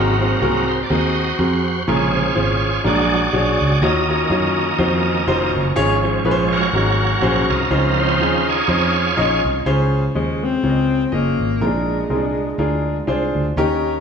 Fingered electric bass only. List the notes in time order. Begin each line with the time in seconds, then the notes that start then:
Already playing: G#1
0.41 C2
0.90 D#2
1.39 F2
1.88 A#1
2.36 G#1
2.85 A#1
3.33 B1
3.61 C#2
3.82 D#2
4.30 F#2
4.78 F2
5.27 F1
5.55 F#1
5.76 G#1
6.24 A#1
6.73 G#1
7.22 A#1
7.49 C2
7.70 C#2
8.19 D#2
8.68 F2
9.17 A#1
9.45 C2
9.66 C#2
10.15 D#2
10.63 C#2
11.12 F#1
11.39 G#1
11.61 A#1
12.10 C2
12.58 D2
13.07 C2
13.35 D2
13.56 D#2